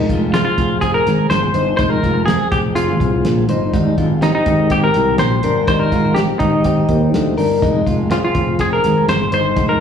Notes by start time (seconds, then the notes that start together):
0.09 F1 G#3 F4, kick, closed hi-hat
0.34 C4 F4 G#4, snare, closed hi-hat
0.45 F4
0.58 F1, kick, closed hi-hat
0.81 C4 G#4, kick, closed hi-hat
0.94 A#4
1.07 G#1, snare, closed hi-hat
1.30 G1 C5, snare, closed hi-hat
1.54 G1 D#4 C5, closed hi-hat
1.77 F1 G#3 D#4 C5, kick, closed hi-hat
1.90 A#4
2.03 F1 G#3 F4, kick, closed hi-hat
2.26 C4 G#4, snare, closed hi-hat
2.52 F1 G4, kick, closed hi-hat
2.75 C4 F4 G#4, closed hi-hat
3.00 C2, kick, closed hi-hat
3.25 A#1, snare, closed hi-hat
3.49 G1 D#4 C5, closed hi-hat
3.74 G#1 G3 D#4, kick, closed hi-hat
3.98 G#1 G#3 F4, kick, closed hi-hat
4.21 C4 D#4 G4, snare, closed hi-hat
4.35 D#4
4.46 G#1, kick, closed hi-hat
4.70 C4 G4, kick, closed hi-hat
4.84 A#4
4.94 C2, snare, closed hi-hat
5.18 A#1 C5, snare, closed hi-hat
5.43 G1 D4 A#4, closed hi-hat
5.68 G#1 G3 D#4 C5, kick, closed hi-hat
5.79 A#4
5.92 G#1 G#3 F4, kick, closed hi-hat
6.14 C4 G4, snare, closed hi-hat
6.39 G#1 D#4, kick, closed hi-hat
6.64 C4 G4, kick, closed hi-hat
6.89 D#2, kick, closed hi-hat
7.14 D2, snare, closed hi-hat
7.38 G1 D4 A#4, open hi-hat
7.62 F1 G#3 D#4, kick, closed hi-hat
7.86 F1 G#3 F4, kick, closed hi-hat
8.11 C4 F4 G#4, snare, closed hi-hat
8.24 F4
8.35 F1, kick, closed hi-hat
8.59 C4 G#4, kick, closed hi-hat
8.73 A#4
8.84 G#1, snare, closed hi-hat
9.08 G1 C5, snare, closed hi-hat
9.32 G1 D#4 C5, closed hi-hat
9.56 F1 G#3 D#4, kick, closed hi-hat
9.69 A#4